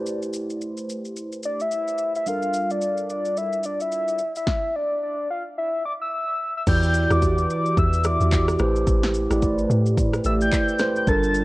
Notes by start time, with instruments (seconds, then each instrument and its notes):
Already playing: tine electric piano A3 E4 G4 B4 C5
0.06 shaker
0.22 shaker
0.33 shaker
0.50 shaker
0.61 shaker
0.77 shaker
0.90 shaker
1.05 shaker
1.17 shaker
1.32 shaker
1.43 soft synth lead D5, shaker
1.60 soft synth lead E5, shaker
1.71 soft synth lead E5, shaker
1.88 shaker
1.98 shaker
2.15 soft synth lead E5, shaker
2.26 tine electric piano G3 D4 F4 A4 A#4, soft synth lead F5, shaker
2.42 shaker
2.53 shaker
2.70 soft synth lead D5, shaker
2.81 shaker
2.97 shaker
3.10 soft synth lead D5, shaker
3.25 shaker
3.37 soft synth lead E5, shaker
3.53 shaker
3.63 soft synth lead D5, shaker
3.80 soft synth lead E5, shaker
3.92 shaker
4.08 shaker
4.18 shaker
4.36 soft synth lead E5, shaker
4.47 soft synth lead E5, kick, snare
4.76 soft synth lead D5
5.03 soft synth lead D5
5.31 soft synth lead F5
5.58 soft synth lead E5
5.86 soft synth lead D6
6.02 soft synth lead E6
6.14 soft synth lead E6
6.57 soft synth lead E6
6.67 log drum bass E2, tine electric piano E3 E4 F#4 G4 D5, soft synth lead G6, kick, crash, shaker
6.83 shaker
6.94 shaker
7.10 log drum bass E2, tine electric piano E3 E4 F#4 G4 B4, soft synth lead D6, cross-stick, shaker
7.22 kick, shaker
7.38 shaker
7.50 soft synth lead D6, shaker
7.66 shaker
7.77 log drum bass E2, soft synth lead E6, kick, shaker
7.93 shaker
8.04 tine electric piano E3 E4 F#4 G4 E5, soft synth lead D6, cross-stick, shaker
8.21 log drum bass E2, shaker
8.32 kick, clap, shaker
8.48 cross-stick, shaker
8.59 log drum bass A1, tine electric piano A3 E4 G4 B4 C5, cross-stick, shaker
8.76 shaker
8.87 log drum bass A1, kick, shaker
9.03 snare, shaker
9.14 shaker
9.31 log drum bass A1, tine electric piano A3 E4 G4 B4 D5, cross-stick, shaker
9.42 kick, shaker
9.58 shaker
9.70 log drum bass A2, shaker
9.86 shaker
9.97 kick, shaker
10.13 cross-stick, shaker
10.24 log drum bass A1, tine electric piano A3 E4 G4 B4 D5, soft synth lead E6, shaker
10.41 soft synth lead G6, shaker
10.52 soft synth lead G6, kick, clap, shaker
10.69 shaker
10.79 tine electric piano A3 E4 G4 B4 C5, cross-stick, snare, shaker
10.96 soft synth lead G6, shaker
11.07 log drum bass G1, tine electric piano G3 D4 F4 A4 A#4, soft synth lead A6, kick, shaker
11.23 shaker
11.34 shaker